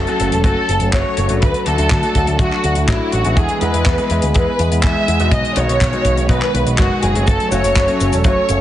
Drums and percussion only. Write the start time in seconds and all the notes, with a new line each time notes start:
0.07 closed hi-hat
0.20 closed hi-hat
0.32 closed hi-hat
0.44 kick, closed hi-hat
0.69 closed hi-hat
0.80 closed hi-hat
0.93 kick, clap
1.17 closed hi-hat
1.29 closed hi-hat
1.42 kick, closed hi-hat
1.54 closed hi-hat
1.66 closed hi-hat
1.78 closed hi-hat
1.90 kick, clap, closed hi-hat
2.03 closed hi-hat
2.15 kick, closed hi-hat
2.27 closed hi-hat
2.39 kick, closed hi-hat
2.53 clap
2.64 closed hi-hat
2.75 closed hi-hat
2.88 kick, clap, closed hi-hat
3.12 closed hi-hat
3.25 closed hi-hat
3.37 kick, closed hi-hat
3.49 closed hi-hat
3.61 closed hi-hat
3.74 closed hi-hat
3.86 kick, clap, closed hi-hat
3.98 closed hi-hat
4.10 closed hi-hat
4.22 closed hi-hat
4.34 kick, closed hi-hat
4.59 closed hi-hat
4.72 closed hi-hat
4.83 kick, clap, closed hi-hat
5.08 closed hi-hat
5.20 closed hi-hat
5.32 kick, closed hi-hat
5.45 closed hi-hat
5.56 closed hi-hat
5.69 closed hi-hat
5.81 kick, clap, closed hi-hat
5.93 closed hi-hat
6.05 kick, closed hi-hat
6.17 closed hi-hat
6.29 kick, closed hi-hat
6.42 clap
6.55 closed hi-hat
6.67 closed hi-hat
6.78 kick, clap, closed hi-hat
7.03 closed hi-hat
7.15 closed hi-hat
7.27 kick, closed hi-hat, cabasa
7.40 closed hi-hat
7.52 closed hi-hat, cabasa
7.64 closed hi-hat, cabasa
7.76 kick, clap, closed hi-hat, cabasa
7.88 closed hi-hat
8.00 closed hi-hat, cabasa
8.13 closed hi-hat, cabasa
8.24 kick, closed hi-hat, cabasa
8.49 closed hi-hat, cabasa